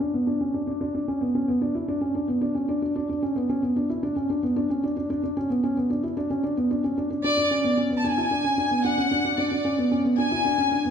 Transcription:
0.00 felt piano D4
0.14 felt piano B3
0.27 felt piano D4
0.41 felt piano C#4
0.54 felt piano D4
0.67 felt piano D4
0.81 felt piano D4
0.94 felt piano D4
1.08 felt piano C#4
1.21 felt piano B3
1.35 felt piano C#4
1.48 felt piano B3
1.61 felt piano D4
1.75 felt piano E4
1.88 felt piano D4
2.01 felt piano C#4
2.15 felt piano D4
2.28 felt piano B3
2.41 felt piano D4
2.55 felt piano C#4
2.69 felt piano D4
2.82 felt piano D4
2.96 felt piano D4
3.09 felt piano D4
3.23 felt piano C#4
3.36 felt piano B3
3.49 felt piano C#4
3.63 felt piano B3
3.76 felt piano D4
3.90 felt piano E4
4.03 felt piano D4
4.16 felt piano C#4
4.30 felt piano D4
4.43 felt piano B3
4.56 felt piano D4
4.70 felt piano C#4
4.83 felt piano D4
4.97 felt piano D4
5.10 felt piano D4
5.23 felt piano D4
5.37 felt piano C#4
5.50 felt piano B3
5.64 felt piano C#4
5.77 felt piano B3
5.90 felt piano D4
6.03 felt piano E4
6.17 felt piano D4
6.30 felt piano C#4
6.43 felt piano D4
6.57 felt piano B3
6.71 felt piano D4
6.84 felt piano C#4
6.98 felt piano D4
7.10 felt piano D4
7.24 felt piano D4, violin section D5
7.37 felt piano D4
7.51 felt piano C#4
7.64 felt piano B3
7.77 felt piano C#4
7.91 felt piano B3
7.97 violin section A5
8.04 felt piano D4, violin section G#5
8.18 felt piano E4
8.31 felt piano D4
8.44 felt piano C#4
8.58 felt piano D4
8.71 felt piano B3
8.84 felt piano D4, violin section F#5
8.98 felt piano C#4
9.11 felt piano D4
9.25 felt piano D4
9.38 felt piano D4, violin section D5
9.51 felt piano D4
9.65 felt piano C#4
9.78 felt piano B3
9.91 felt piano C#4
10.05 felt piano B3
10.18 felt piano D4, violin section G#5
10.32 felt piano E4
10.45 felt piano D4
10.58 felt piano C#4
10.72 felt piano D4
10.85 felt piano B3

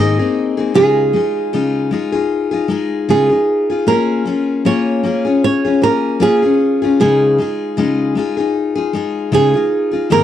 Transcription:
Already playing: steel-string acoustic guitar G#2 D#3 A#3, nylon-string guitar D#5
0.00 steel-string acoustic guitar C4 D#4 G#4
0.19 steel-string acoustic guitar A#3 C4 D#4 G#4
0.57 steel-string acoustic guitar A#3 C4 D#4 G#4
0.74 steel-string acoustic guitar C#3 G#3 D#4 F4 G#4, nylon-string guitar G#4
1.13 steel-string acoustic guitar G#3 D#4 F4 G#4
1.53 steel-string acoustic guitar C#3 G#3 D#4 F4 G#4
1.91 steel-string acoustic guitar G#3 D#4 F4 G#4
2.12 steel-string acoustic guitar D#4 F4 G#4
2.51 steel-string acoustic guitar D#4 F4 G#4
2.68 steel-string acoustic guitar G#3 D#4 F4 G#4
3.09 steel-string acoustic guitar C#3 G#3 D#4 F4 G#4, nylon-string guitar G#4
3.29 steel-string acoustic guitar D#4 F4 G#4
3.70 steel-string acoustic guitar D#4 F4 G#4
3.87 steel-string acoustic guitar A#3 C#4 F4 G#4, nylon-string guitar A#4
4.25 steel-string acoustic guitar A#3 C#4 F4 G#4
4.65 steel-string acoustic guitar A#3 C#4 F4 G#4, nylon-string guitar C#5
5.03 steel-string acoustic guitar A#3 C#4 F4 G#4
5.25 steel-string acoustic guitar C#4 F4 G#4
5.44 nylon-string guitar C#5
5.65 steel-string acoustic guitar C#4 F4 G#4
5.82 steel-string acoustic guitar A#3 C#4 F4 G#4, nylon-string guitar A#4
6.20 steel-string acoustic guitar A#3 C#4 F4 G#4, nylon-string guitar G#4
6.42 steel-string acoustic guitar C#4 F4 G#4
6.82 steel-string acoustic guitar C#4 F4 G#4
7.00 steel-string acoustic guitar C#3 G#3 D#4 F4 G#4, nylon-string guitar G#4
7.38 steel-string acoustic guitar G#3 D#4 F4 G#4
7.77 steel-string acoustic guitar C#3 G#3 D#4 F4 G#4
8.15 steel-string acoustic guitar G#3 D#4 F4 G#4
8.37 steel-string acoustic guitar D#4 F4 G#4
8.75 steel-string acoustic guitar D#4 F4 G#4
8.93 steel-string acoustic guitar G#3 D#4 F4 G#4
9.32 steel-string acoustic guitar C#3 G#3 D#4 F4 G#4, nylon-string guitar G#4
9.54 steel-string acoustic guitar D#4 F4 G#4
9.91 steel-string acoustic guitar D#4 F4 G#4
10.10 steel-string acoustic guitar G#2 D#3 A#3 C4 D#4 G#4, nylon-string guitar A#4

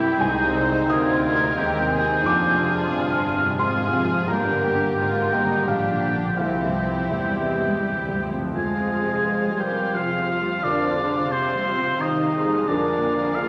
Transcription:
Already playing: felt piano C2 G2 G3 D5 G5 A#5 C6, cello section C2, double bass section C2, harp C3 D4 E4 G4 C5, violin section E4 G4, viola section E4, clarinet E4, flute section G6
0.00 felt piano E4
0.20 double bass section C2, cello section C2, felt piano C2 G#5, harp C3, french horn section G#3, viola section C4, clarinet D#4, violin section D#4 G#4
0.44 felt piano C3
0.52 harp C4, violin section C5
0.68 felt piano D#4
0.89 double bass section D2, cello section D2, felt piano C3 D#6, french horn section D#4, harp D#4, violin section F4 A#4, flute section G#6
1.12 felt piano C5
1.24 flute section G#6
1.34 felt piano C3
1.56 double bass section D#2, cello section D#2, felt piano G#3, viola section C4, clarinet C4, harp D#4, violin section G4, flute section G6
1.80 felt piano C3
1.92 harp C4, violin section G#4
2.03 felt piano D#4
2.24 double bass section F1, felt piano F2 D6, cello section F2, harp F2, viola section A#3, french horn section D4, violin section F4 G#4
2.47 felt piano C3
2.59 viola section G#3, harp C4
2.70 felt piano F4
2.92 double bass section G1, cello section G2, felt piano C3, viola section F3, harp F4, flute section F6
3.14 felt piano C5
3.26 viola section F3, harp G#4
3.36 felt piano C3
3.58 double bass section G#1, cello section G#2, felt piano G#3 C6, french horn section C4, clarinet F4, harp F4, violin section F4 G#4, flute section F6
3.81 felt piano C3
3.93 french horn section F3, harp C4, felt piano F5
4.05 felt piano F4
4.28 double bass section G1, felt piano G2 A#5, cello section G2, viola section G3, french horn section A#3, violin section D4 A#4, clarinet G4, flute section G6
4.50 felt piano D3
4.63 harp A#3, violin section G4
4.74 felt piano D4
4.97 double bass section G#1, cello section G#2, felt piano D3, viola section A#3, violin section F4 A#4, harp D5
5.21 felt piano G4
5.32 french horn section G3, violin section D#4, harp A#4, felt piano G5
5.44 felt piano D3
5.68 double bass section A#1, cello section A#2, french horn section F3, felt piano G3 F5, violin section D4 G4, viola section D4, harp D4
5.91 felt piano D3
6.15 felt piano D4
6.37 felt piano C2 F5, double bass section C2, harp C3, cello section C3, french horn section F3, viola section C4, violin section E4 G4, clarinet G4, flute section G6
6.64 felt piano G2
6.76 harp C4
6.87 felt piano C4
7.11 double bass section E2, felt piano G2 E5, french horn section E3, cello section G3, clarinet G4, flute section G6
7.36 felt piano G4
7.48 cello section G#3, harp C4
7.61 felt piano G2
7.84 double bass section D2, cello section G3, felt piano G3
8.08 felt piano G2
8.21 cello section F3, harp C4
8.33 felt piano C4
8.39 harp F2
8.43 harp F3
8.48 harp C4
8.52 felt piano F2, cello section G#3, harp F4, french horn section F4, violin section F4 C5 F5, viola section G#4, oboe G#5
8.57 clarinet G#4
8.79 felt piano C4
8.92 french horn section G#4
9.02 felt piano C3
9.25 felt piano C4, french horn section C5
9.48 felt piano G3
9.58 cello section G3, clarinet G4, viola section G4, french horn section A#4, oboe G5
9.71 felt piano C4
9.94 felt piano C3, cello section F3, clarinet F4, viola section F4, french horn section G#4, oboe F5
10.18 felt piano C4
10.29 french horn section G4
10.42 felt piano G3
10.62 felt piano F2, cello section D3, viola section D4, clarinet D4, french horn section A#4, oboe D5
10.87 felt piano C4
10.97 french horn section G#4
11.10 felt piano C3
11.31 cello section C3, clarinet C4, viola section C4, felt piano C4, french horn section G4, oboe C5
11.55 felt piano G3
11.68 french horn section F4
11.78 felt piano C4
12.00 felt piano C3, cello section D#3, clarinet D#4, viola section D#4, french horn section G4, oboe D#5
12.24 felt piano C4
12.35 french horn section G#4
12.46 felt piano G3
12.50 harp F2
12.55 harp G#3
12.59 harp A#3
12.63 harp F4
12.67 felt piano F2, cello section D3, clarinet D4, viola section D4, violin section G#4 A#4 F5, french horn section A#4, oboe D5
12.93 felt piano A#3
13.15 felt piano F3
13.35 cello section F3, felt piano A#3, clarinet F4, viola section F4, french horn section G#4, oboe F5

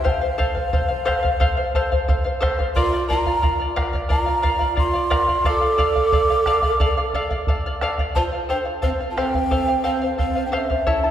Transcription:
0.04 charango A4 C5 F5, quena G5, bombo low
0.10 quena F5
0.21 charango C5 F5
0.38 charango A4 C5 F5, bombo low
0.55 charango C5 F5, bombo low
0.73 charango A4 C5 F5, bombo low
0.88 charango C5 F5
1.05 charango A4 C5 F5, bombo rim, bombo low
1.23 charango C5 F5, bombo low
1.40 charango A4 C5 F5, bombo low
1.57 charango C5 F5
1.74 charango A4 C5 F5, bombo low
1.92 charango C5 F5, bombo low
2.08 charango A4 C5 F5, bombo low
2.24 charango C5 F5
2.41 charango A4 C5 F5, bombo rim, bombo low
2.59 charango C5 F5, bombo low
2.75 pan flute F4, charango A#4 D5 F5, quena C6, bombo low
2.93 charango D5 F5
3.09 pan flute F4, charango A#4 D5 F5, quena A#5, bombo low
3.26 charango D5 F5, bombo low
3.42 charango A#4 D5 F5, bombo low
3.60 charango D5 F5
3.76 charango A#4 D5 F5, bombo rim, bombo low
3.93 charango D5 F5, bombo low
4.09 pan flute F4, charango A#4 D5 F5, quena A#5, bombo low
4.26 charango D5 F5
4.42 charango A#4 D5 F5, bombo low
4.59 charango D5 F5, bombo low
4.76 pan flute F4, charango A#4 D5 F5, quena C6, bombo low
4.93 charango D5 F5
5.10 charango A#4 D5 F5, bombo rim, bombo low
5.28 charango D5 F5, bombo low
5.45 charango A4 D5 F5, pan flute A4, quena D6, bombo low
5.61 charango D5 F5
5.78 charango A4 D5 F5, bombo low
5.95 charango D5 F5, bombo low
6.12 charango A4 D5 F5, bombo low
6.30 charango D5 F5
6.46 charango A4 D5 F5, bombo rim, bombo low
6.62 charango D5 F5, bombo low
6.80 charango A4 D5 F5, bombo low
6.97 charango D5 F5
7.13 charango A4 D5 F5, bombo low
7.30 charango D5 F5, bombo low
7.47 charango A4 D5 F5, bombo low
7.66 charango D5 F5
7.81 charango A4 D5 F5, bombo rim
7.98 charango D5 F5, bombo low
8.15 pan flute F4, charango A4 C5 F5, quena A5, bombo low
8.33 charango C5 F5
8.49 pan flute D4, charango A4 C5 F5, quena G5
8.65 charango C5 F5
8.82 pan flute C4, charango A4 C5 F5, quena F5, bombo low
9.00 charango C5 F5
9.11 pan flute F4, quena A5
9.17 pan flute C4, charango A4 C5 F5, quena G5, bombo rim, bombo low
9.34 charango C5 F5, bombo low
9.51 charango A4 C5 F5, bombo low
9.68 charango C5 F5
9.84 pan flute C4, charango A4 C5 F5, quena F5
10.02 charango C5 F5
10.18 pan flute C4, charango A4 C5 F5, quena F5, bombo low
10.35 charango C5 F5
10.46 pan flute D4, quena G5
10.52 pan flute C#4, charango A4 C5 F5, quena F5, bombo rim
10.57 quena E5
10.70 charango C5 F5, bombo low
10.87 charango E4 A4 C#5 E5 A5, bombo low
11.04 charango E4 A4 A5

